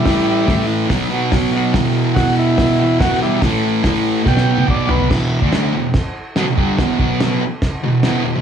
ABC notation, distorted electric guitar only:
X:1
M:4/4
L:1/16
Q:1/4=143
K:Bmix
V:1 name="Distorted electric guitar" clef=bass
[A,,E,A,]4 [A,,E,A,]4 [B,,F,B,]2 [F,B,]2 [B,,F,B,]2 [F,B,]2 | [E,,B,,E,]4 [E,,B,,E,]6 [B,,E,]2 [E,,B,,E,]2 [B,,E,]2 | [A,,E,A,]4 [A,,E,A,]4 [B,,F,B,]2 [F,B,]2 [B,,F,B,]2 [F,B,]2 | [E,,B,,E,]3 [=D,A,=D]3 [E,,B,,]2 z4 [B,,F,] [E,,B,,] [=G,,D,=G,]2 |
[E,,B,,E,]2 [B,,F,B,]4 z4 [E,,B,,]2 [E,,B,,E,]2 [E,,B,,] [E,,B,,] |]